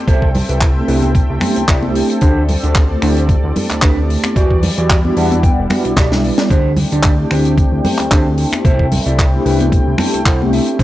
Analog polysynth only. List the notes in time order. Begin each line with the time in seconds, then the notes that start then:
0.75 A3 C4 D4 E4 G4
0.87 A3 C4 D4 E4 G4
1.41 A3 C4 D4 E4 G4
1.82 A3 C4 D4 E4 G4
2.89 A3 C4 D4 E4 G4
3.01 A3 C4 D4 E4 G4
5.04 G3 B3 D4 E4 F#4
5.16 G3 B3 D4 E4 F#5
5.70 G3 B3 D4 E4 F#4
6.11 G3 B3 D4 E4
7.18 A3 C4 D4 E4 G4
7.30 A3 C4 D4 E4 G4
9.33 A3 C4 D4 E4 G4
9.45 A3 C4 D4 E4 G4
9.99 A3 C4 D4 E4 G4
10.40 A3 C4 D4 E4 G4